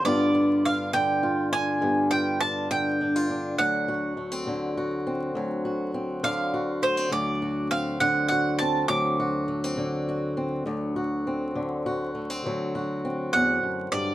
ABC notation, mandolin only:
X:1
M:12/8
L:1/8
Q:3/8=68
K:Dmix
V:1 name="Mandolin"
d2 =f g2 ^g2 =g a g3 | f8 z =f2 c | d2 =f ^f f a d'6- | d'8- d' f2 d |]